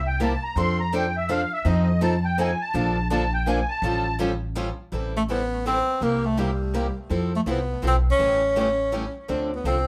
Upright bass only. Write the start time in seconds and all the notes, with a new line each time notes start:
Already playing: C2
0.56 F2
1.65 F2
2.74 A#1
3.82 A1
4.92 A1
6.01 C2
7.10 F2
7.46 C2
7.83 B1
8.19 A1
9.29 D2
9.64 C2